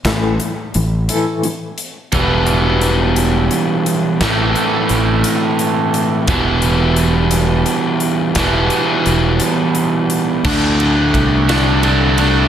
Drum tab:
CC |------|------|------|------|
RD |------|------|------|------|
HH |xxxxxx|xxxxxx|xxxxxx|xxxxxx|
SD |o-----|------|o-----|------|
BD |o-----|o-----|o-----|o-----|

CC |------|x-----|
RD |------|-xxxxx|
HH |xxxxxx|------|
SD |o-----|---o--|
BD |o-----|o-o---|